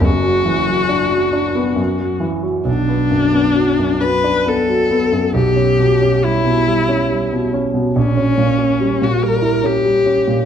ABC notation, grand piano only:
X:1
M:3/4
L:1/16
Q:1/4=69
K:Bm
V:1 name="Grand piano" clef=bass
[F,,,F,,] F, E, F, D F, D B, F,, F, E, F, | B,,, B, F,, B, F, F,, F, D B, F, B, F,, | B,,, C B,, C G, B,, G, C G, B,, C B,, | ^A,,, C ^A,, C G, A,, G, E C G, C A,, |]